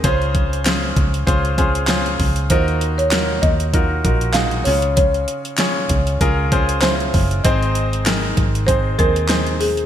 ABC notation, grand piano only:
X:1
M:4/4
L:1/8
Q:"Swing 16ths" 1/4=97
K:Db
V:1 name="Grand piano"
[DFAc]2 [DFAc]2 [DFAc] [DFAc] [DFAc]2 | [EFGB]2 [EFGB]2 [EFGB] [EFGB] [EFGA] [DFAd]- | [DFAd]2 [DFAd]2 [DFAB] [DFAc] [D_F=FAc]2 | [CEAc]2 [CEAB]2 [CEAc] [CEAc] [CEAc]2 |]
V:2 name="Grand piano" clef=bass
D,3 z4 z | E,3 z4 D,- | D,2 z6 | A,,3 z4 z |]